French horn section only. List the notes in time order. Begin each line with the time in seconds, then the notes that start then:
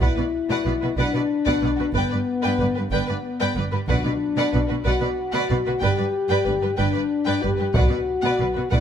0.00 E4
0.97 D4
1.94 B3
2.93 B3
3.89 D4
4.86 F#4
5.82 G4
6.79 D4
7.43 G4
7.76 F#4
8.72 E4